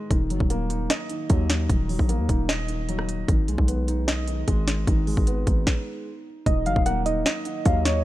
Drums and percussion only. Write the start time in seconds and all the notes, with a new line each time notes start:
0.11 kick, closed hi-hat
0.30 closed hi-hat
0.40 kick
0.50 closed hi-hat
0.70 closed hi-hat
0.90 snare, closed hi-hat
1.09 closed hi-hat
1.30 kick, closed hi-hat
1.50 snare, closed hi-hat
1.70 kick, closed hi-hat
1.89 open hi-hat
1.99 kick
2.09 closed hi-hat
2.29 kick, closed hi-hat
2.49 snare, closed hi-hat
2.68 closed hi-hat
2.89 closed hi-hat
2.99 cross-stick
3.09 closed hi-hat
3.28 kick, closed hi-hat
3.48 closed hi-hat
3.58 kick
3.68 closed hi-hat
3.88 closed hi-hat
4.08 snare, closed hi-hat
4.27 closed hi-hat
4.48 kick, closed hi-hat
4.68 snare, closed hi-hat
4.87 kick, closed hi-hat
5.07 open hi-hat
5.17 kick
5.27 closed hi-hat
5.47 kick, closed hi-hat
5.67 kick, snare
6.46 kick, closed hi-hat
6.66 closed hi-hat
6.76 kick
6.86 closed hi-hat
7.06 closed hi-hat
7.26 snare, closed hi-hat
7.45 closed hi-hat
7.65 kick, closed hi-hat
7.85 snare, closed hi-hat